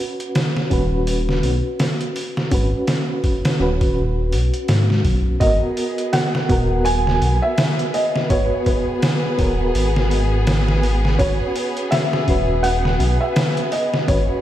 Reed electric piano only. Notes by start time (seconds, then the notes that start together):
Already playing: C#4 F#4 B4
0.70 C#4 F#4 B4
2.51 C#4 F#4 B4
3.59 C#4 F#4 B4
5.40 B3 F#4 A#4
6.49 B3 F#4 A#4
8.30 B3 F#4 B4
9.38 B3 F#4 A#4
11.19 C#4 F#4 B4
12.27 C#4 F#4 B4
14.08 C#4 F#4 B4